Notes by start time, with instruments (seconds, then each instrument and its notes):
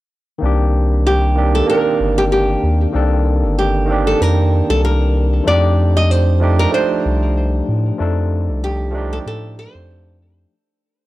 0.38 analog synth bass C2, tine electric piano D#3 A#3 C4
0.44 tine electric piano D4 G4
1.07 nylon-string guitar G4
1.35 tine electric piano D#3 A#3 C4 D4 G4
1.55 nylon-string guitar A4
1.65 tine electric piano D#3 A#3 C4
1.69 tine electric piano D4 A#4, nylon-string guitar A#4
2.00 analog synth bass G1
2.18 nylon-string guitar G4
2.32 nylon-string guitar G4
2.63 analog synth bass D#2
2.93 analog synth bass C2, tine electric piano D#3 A#3 C4 D4 A4
3.43 analog synth bass G1
3.59 nylon-string guitar G4
3.86 tine electric piano D#3 A#3 C4
3.91 tine electric piano D4 G4
4.07 nylon-string guitar A4
4.21 analog synth bass F2, nylon-string guitar A#4
4.70 analog synth bass C2, nylon-string guitar A4
4.85 nylon-string guitar A#4
5.44 analog synth bass F2, tine electric piano F3 A3 D4, nylon-string guitar D5
5.49 tine electric piano D#4 G4
5.97 nylon-string guitar D#5
6.11 nylon-string guitar C5
6.40 tine electric piano F3 A3 D4 D#4 G4
6.59 nylon-string guitar A#4
6.70 tine electric piano F3 A3 D4, nylon-string guitar C5
6.75 tine electric piano D#4 C5
7.05 analog synth bass C2
7.68 analog synth bass A2
7.98 analog synth bass F2, tine electric piano F3 A3 D4 D#4 A4
8.49 analog synth bass C2
8.64 nylon-string guitar G4
8.91 tine electric piano F3 A3 D4
8.96 tine electric piano D#4 G4
9.13 nylon-string guitar A4
9.26 analog synth bass A2, nylon-string guitar A4
9.59 nylon-string guitar C5
9.75 analog synth bass F2